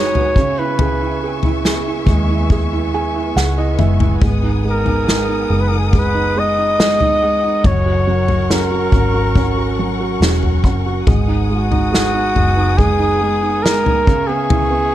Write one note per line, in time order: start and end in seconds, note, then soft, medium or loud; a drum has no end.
0.00 0.36 F#1 medium
0.00 0.33 G#3 medium
0.00 0.38 D#4 medium
0.00 0.16 F#4 medium
0.00 0.33 B4 medium
0.00 0.60 C#5 loud
0.00 0.32 F#5 medium
0.00 11.03 G#5 medium
0.00 0.32 D#6 medium
0.15 0.36 F#4 medium
0.15 floor tom medium
0.35 1.17 C#2 medium
0.35 3.75 C#3 medium
0.35 7.60 B3 medium
0.35 4.18 E5 medium
0.35 4.18 C#6 medium
0.35 kick loud
0.59 1.00 E4 medium
0.59 1.43 B4 medium
0.79 1.22 G#4 medium
0.79 floor tom loud
1.01 1.43 E4 medium
1.23 1.65 G#4 medium
1.43 1.86 E4 medium
1.43 floor tom medium
1.65 2.50 G#4 medium
1.65 snare medium
1.88 2.29 E4 medium
2.06 3.31 D#2 medium
2.06 3.78 G#3 medium
2.06 kick loud
2.06 floor tom medium
2.30 2.71 E4 soft
2.50 2.93 G#4 medium
2.50 kick medium
2.50 floor tom medium
2.73 3.14 E4 medium
2.94 3.35 G#4 medium
2.94 3.33 G#5 medium
3.16 3.56 E4 medium
3.36 3.76 C#2 medium
3.36 4.19 G#4 medium
3.36 3.56 F#5 medium
3.36 snare medium
3.58 3.99 E4 medium
3.58 3.77 D#5 medium
3.79 4.19 F#1 medium
3.79 4.20 G#3 medium
3.79 4.19 E5 medium
3.79 mid tom medium
4.00 4.21 E4 medium
4.00 floor tom medium
4.21 5.46 G#1 loud
4.21 4.63 G#3 medium
4.21 14.03 F#5 medium
4.21 7.61 D#6 medium
4.21 kick loud
4.21 floor tom loud
4.43 4.84 D#4 medium
4.64 5.05 G#3 medium
4.69 5.62 A#4 medium
4.85 5.27 D#4 medium
4.85 floor tom medium
5.07 5.48 G#3 medium
5.07 snare medium
5.28 5.70 D#4 medium
5.50 7.60 F#1 medium
5.50 5.92 G#3 medium
5.60 5.70 B4 medium
5.68 6.13 D#4 soft
5.68 5.79 A#4 medium
5.78 5.89 G#4 medium
5.87 5.94 A#4 medium
5.93 6.35 G#3 medium
5.93 kick medium
5.93 floor tom medium
5.97 6.40 B4 loud
6.15 6.57 D#4 medium
6.36 6.78 G#3 medium
6.36 7.68 D#5 loud
6.58 6.99 D#4 medium
6.79 7.21 G#3 medium
6.79 snare loud
7.00 7.42 D#4 medium
7.00 floor tom medium
7.23 7.64 G#3 medium
7.44 7.64 D#4 medium
7.64 8.89 F#1 loud
7.64 8.06 F#3 medium
7.64 11.04 A#4 medium
7.64 8.53 C#5 loud
7.64 11.03 C#6 medium
7.64 kick loud
7.64 floor tom loud
7.86 8.27 F#4 medium
8.07 9.75 F#3 medium
8.28 8.70 F#4 medium
8.28 floor tom medium
8.51 8.92 C#4 medium
8.51 10.22 A#4 medium
8.51 snare medium
8.71 9.12 F#4 medium
8.92 10.17 G#1 medium
8.92 9.35 C#4 medium
8.92 kick medium
8.92 floor tom medium
9.14 9.56 F#4 medium
9.35 10.20 C#4 medium
9.35 kick medium
9.35 floor tom medium
9.57 9.99 F#4 medium
9.79 11.03 F#3 medium
10.00 10.42 F#4 medium
10.20 10.64 E1 medium
10.20 10.63 C#4 medium
10.20 snare loud
10.43 10.85 F#4 medium
10.43 floor tom medium
10.64 11.04 F#1 medium
10.64 11.06 C#4 medium
10.64 kick medium
10.86 11.07 F#4 medium
11.06 12.31 G#1 loud
11.06 11.48 G#3 medium
11.06 14.95 B3 medium
11.06 14.95 G#5 medium
11.06 14.03 D#6 medium
11.06 kick loud
11.06 floor tom loud
11.28 11.70 D#4 medium
11.50 11.90 G#3 medium
11.50 12.79 F#4 medium
11.71 12.13 D#4 medium
11.71 floor tom medium
11.92 12.34 G#3 medium
11.92 snare medium
12.14 12.55 D#4 medium
12.35 14.07 F#1 loud
12.35 12.77 G#3 medium
12.35 floor tom medium
12.57 12.98 D#4 medium
12.77 13.20 G#3 medium
12.77 13.64 G#4 loud
12.77 kick medium
12.77 floor tom medium
12.99 13.41 D#4 medium
13.21 13.63 G#3 medium
13.42 13.84 D#4 medium
13.63 14.06 G#3 medium
13.63 14.28 A#4 loud
13.63 snare loud
13.85 14.06 D#4 medium
13.85 floor tom medium
14.07 14.89 C#2 medium
14.07 14.95 C#3 medium
14.07 14.95 E5 medium
14.07 14.95 C#6 medium
14.07 kick loud
14.27 14.69 B3 medium
14.27 14.95 G#4 loud
14.50 14.91 E4 medium
14.50 floor tom loud
14.71 14.95 B3 medium